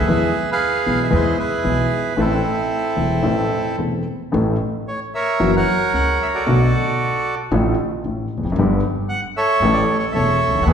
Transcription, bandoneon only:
0.00 0.50 G#4 medium
0.00 0.50 B4 medium
0.00 0.50 E5 medium
0.52 1.13 G#4 medium
0.52 1.38 B4 medium
0.52 0.99 F5 medium
1.04 1.09 E5 medium
1.14 1.37 E4 medium
1.14 1.37 G#4 medium
1.14 1.39 C5 medium
1.38 2.14 E4 medium
1.38 2.13 G#4 medium
1.38 2.21 B4 medium
2.19 3.76 C4 medium
2.19 3.76 E4 medium
2.19 3.76 A4 medium
4.88 5.00 C#5 medium
5.15 5.55 A#4 medium
5.15 5.55 C#5 medium
5.15 5.51 E5 medium
5.57 6.44 A#4 medium
5.57 6.44 C#5 medium
5.57 5.93 F#5 medium
5.94 6.19 F#5 medium
6.22 6.28 E5 medium
6.35 7.35 F#4 medium
6.35 7.35 A4 medium
6.35 7.35 D5 medium
9.09 9.21 F#5 loud
9.37 10.13 A4 medium
9.37 9.97 C#5 medium
9.37 9.72 E5 medium
9.73 9.85 D5 medium
9.99 10.05 C#5 medium
10.12 10.64 A4 medium
10.12 10.64 C#5 medium
10.12 10.61 E5 medium
10.63 10.73 E5 medium
10.63 10.68 F#5 medium
10.67 10.73 G#4 medium
10.67 10.73 B4 medium

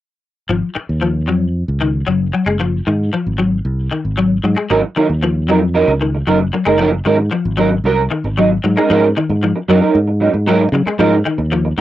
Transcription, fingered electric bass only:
0.49 0.61 G#1 medium
0.76 muted fingered electric bass stroke soft
0.89 1.29 D#2 medium
1.29 1.63 F2 medium
1.68 2.02 C#2 medium
2.08 2.30 F#1 medium
2.46 2.80 F#1 medium
2.87 3.09 G#2 medium
3.26 3.60 G#1 medium
3.65 3.87 C2 medium
4.05 4.38 G#1 medium
4.44 4.55 G#2 medium
4.70 4.81 G#1 medium
4.97 muted fingered electric bass stroke soft
5.09 5.48 D#2 medium
5.48 5.82 F2 medium
5.88 6.22 C#2 medium
6.27 6.50 F#1 medium
6.66 7.00 F#1 medium
7.06 7.28 G#2 medium
7.45 7.79 G#1 medium
7.84 8.07 C2 medium
8.24 8.58 G#1 medium
8.64 8.75 G#2 medium
8.90 9.12 G#2 medium
9.30 9.52 G#2 medium
9.69 9.80 F#2 medium
9.95 10.28 G#2 medium
10.34 10.67 G#2 medium
10.72 10.84 C#3 medium
10.86 muted fingered electric bass stroke soft
10.99 11.21 G#2 loud
11.38 11.72 D#2 medium
11.77 11.81 G#2 medium

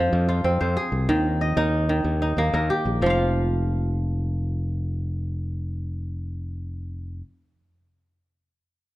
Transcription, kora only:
0.00 1.14 F3 medium
0.00 0.44 A#3 medium
0.00 0.28 F4 medium
0.00 0.41 G4 medium
0.00 0.28 G#4 medium
0.00 0.11 A#4 medium
0.00 0.60 C5 medium
0.00 0.48 F5 medium
0.29 1.80 F4 medium
0.44 2.24 C4 medium
0.61 1.79 C5 medium
0.77 2.13 G#4 medium
1.09 1.88 D#3 medium
1.41 2.48 D#5 medium
1.57 2.21 D#4 medium
1.57 2.54 A#4 medium
1.89 3.07 D#3 medium
2.22 3.84 D#4 medium
2.38 4.31 A#3 medium
2.54 3.81 A#4 medium
2.70 4.11 G4 medium
3.02 7.26 F3 medium
3.06 7.30 F4 medium
3.06 7.33 F5 medium

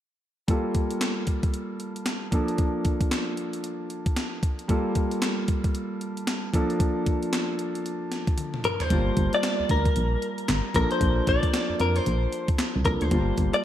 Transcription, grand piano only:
0.48 2.29 G3 medium
0.48 2.29 A#3 medium
0.48 2.29 F4 medium
0.48 2.30 A4 medium
2.31 4.38 F3 medium
2.31 4.39 A#3 medium
2.31 4.39 D4 medium
2.31 4.40 A4 medium
4.68 6.49 G3 medium
4.68 6.50 A#3 medium
4.68 6.50 F4 medium
4.68 6.50 A4 medium
6.53 8.60 F3 medium
6.53 8.60 A#3 medium
6.53 8.61 D4 medium
6.53 8.61 A4 medium
8.90 10.71 G3 medium
8.90 10.71 A#3 medium
8.90 10.71 F4 medium
8.90 10.72 A5 medium
10.74 12.81 F3 medium
10.74 12.81 A#3 medium
10.74 12.82 D4 medium
10.74 12.82 A4 medium
12.85 13.11 F3 soft
12.85 13.10 A#3 soft
12.85 13.12 D4 soft
12.85 13.12 A4 medium
13.11 13.64 G3 medium
13.11 13.64 A#3 medium
13.11 13.64 F4 medium
13.11 13.64 A5 medium

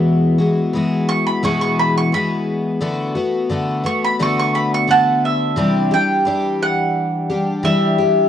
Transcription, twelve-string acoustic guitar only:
0.00 0.41 E2 medium
0.00 0.41 B2 medium
0.00 0.41 E3 medium
0.00 0.39 G#3 medium
0.00 0.39 B3 medium
0.00 0.38 F#4 medium
0.38 0.72 E3 soft
0.38 0.74 G#3 medium
0.38 0.75 B3 medium
0.38 0.74 F#4 medium
0.73 1.42 E3 medium
0.73 1.43 G#3 medium
0.73 1.44 B3 medium
0.73 1.44 F#4 medium
1.43 2.12 E2 medium
1.43 2.13 B2 medium
1.43 2.11 E3 medium
1.43 2.13 G#3 medium
1.43 2.13 B3 medium
1.43 2.14 F#4 medium
2.12 2.80 E3 medium
2.12 2.81 G#3 medium
2.12 2.81 B3 medium
2.12 2.81 F#4 medium
2.81 3.16 D3 medium
2.81 3.16 A3 medium
2.81 3.15 B3 medium
2.81 3.14 F#4 medium
3.15 3.49 A3 soft
3.15 3.51 B3 medium
3.15 3.50 F#4 medium
3.50 3.85 D3 medium
3.50 3.85 A3 medium
3.50 3.83 B3 medium
3.50 3.82 F#4 medium
3.84 4.19 A3 soft
3.84 4.19 B3 soft
3.84 4.19 F#4 soft
4.19 4.86 D3 medium
4.19 4.87 A3 medium
4.19 4.88 B3 medium
4.19 4.90 F#4 medium
4.87 5.57 D3 medium
4.87 5.57 A3 medium
4.87 5.57 B3 medium
4.87 5.58 F#4 medium
5.56 5.92 C3 medium
5.56 5.92 E3 medium
5.56 5.92 G3 medium
5.56 5.92 D4 medium
5.56 5.90 G4 medium
5.91 6.25 G3 soft
5.91 6.25 D4 medium
5.91 6.26 G4 medium
6.25 7.29 E3 medium
6.25 7.31 G3 medium
6.25 7.31 D4 medium
6.25 7.29 G4 medium
7.30 7.64 G3 soft
7.30 7.63 D4 medium
7.30 7.64 G4 medium
7.63 7.98 E3 medium
7.63 7.99 G3 medium
7.63 7.99 D4 medium
7.63 7.97 G4 medium
7.98 8.29 G3 soft
7.98 8.29 D4 medium
7.98 8.29 G4 medium

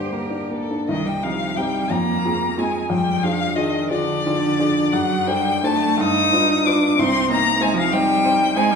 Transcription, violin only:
0.00 0.14 C5 medium
0.13 0.51 A#4 medium
0.52 0.88 A4 medium
0.89 1.08 D#5 medium
1.06 1.25 G5 medium
1.23 1.58 F5 medium
1.56 1.92 G5 medium
1.90 2.60 A#5 medium
2.59 2.89 G#5 medium
2.90 3.24 G5 medium
3.23 3.57 F5 loud
3.55 3.89 D#5 medium
3.90 4.94 D5 loud
4.92 5.28 F#5 medium
5.27 5.66 G5 loud
5.64 6.02 A5 loud
6.01 6.67 D#6 loud
6.66 7.01 D6 medium
6.99 7.30 C6 loud
7.31 7.63 A#5 loud
7.62 7.77 G#5 loud
7.79 7.94 F5 loud
7.93 8.58 G5 loud
8.56 8.74 G#5 loud
8.72 8.75 G5 loud

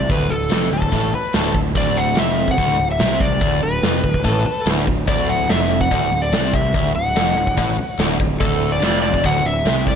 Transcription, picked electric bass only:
0.10 0.29 D1 loud
0.30 0.50 D1 medium
0.51 0.70 F1 medium
0.71 0.91 D1 medium
0.92 1.12 A1 medium
1.13 muted picked electric bass stroke soft
1.34 1.53 D1 medium
1.55 1.74 D1 medium
1.76 2.14 D1 medium
2.18 2.56 F1 medium
2.58 2.78 D1 medium
2.80 2.99 D1 medium
3.00 3.39 C2 medium
3.41 3.61 D1 medium
3.63 3.82 D1 medium
3.83 4.02 F1 medium
4.04 4.23 D1 medium
4.25 4.44 A1 medium
4.45 muted picked electric bass stroke soft
4.66 4.86 D1 medium
4.88 5.07 D1 medium
5.08 5.47 D1 loud
5.50 5.88 F1 medium
5.91 6.11 D1 medium
6.11 6.31 D1 medium
6.32 6.71 C2 medium
6.75 6.94 D1 medium
6.95 7.14 D1 medium
7.16 7.35 F1 medium
7.36 7.56 D1 medium
7.58 7.77 A1 medium
7.78 muted picked electric bass stroke soft
7.99 8.18 D1 loud
8.20 8.39 D1 medium
8.41 8.80 D1 loud
8.81 9.21 F1 medium
9.24 9.44 D1 medium
9.44 9.64 D1 medium
9.65 9.95 C2 medium

